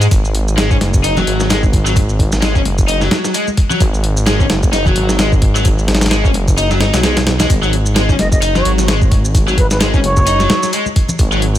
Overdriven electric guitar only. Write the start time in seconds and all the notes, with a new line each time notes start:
0.01 G#3
0.57 G#3
0.71 C#4
1.04 D#4
1.17 F#3
1.50 G#3
1.86 F#3
2.42 G#3
2.55 C#4
2.88 D#4
3.01 F#3
3.34 G#3
3.71 F#3
4.27 G#3
4.40 C#4
4.73 D#4
4.86 F#3
5.19 G#3
5.55 F#3
6.11 G#3
6.24 C#4
6.58 D#4
6.71 F#3
6.81 D#4
6.94 F#3
7.04 G#3
7.40 G#3
7.63 F#3
7.96 G#3
8.09 C#4
8.42 D#4
8.55 F#3
8.88 G#3
9.48 F#3
9.81 G#3
9.94 C#4
10.27 D#4
10.40 F#3
10.73 G#3
11.32 F#3